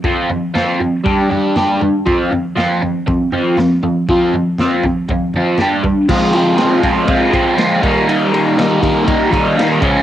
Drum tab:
CC |--------|--------|--------|x-------|
RD |--------|--------|--------|-xxxxxxx|
SD |--o---o-|--o---o-|--o---o-|--o---o-|
FT |oooooooo|oooooooo|oooooooo|--------|
BD |o---o---|o---o---|o--oo--o|o--ooo-o|

CC |--------|
RD |xxxxxxxx|
SD |--o---o-|
FT |--------|
BD |---ooo-o|